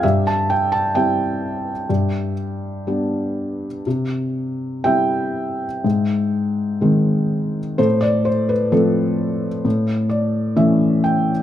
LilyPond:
<<
  \new Staff \with { instrumentName = "Felt piano" } { \time 4/4 \key c \major \tempo 4 = 62 << { e''16 a''16 g''16 a''16 g''4. r4. | r4 g''2. | c''16 d''16 c''16 b'16 a'4. d''8 e''8 g''8 | } \\ { g'4 e''4. r4. | r4 e''2. | a'2 r2 | } >> }
  \new Staff \with { instrumentName = "Felt piano" } { \clef bass \time 4/4 \key c \major g,4 <g c' e'>4 g,4 <g b d'>4 | c4 <g c' e'>4 aes,4 <ees aes c'>4 | a,4 <f a c'>4 a,4 <e a cis'>4 | }
>>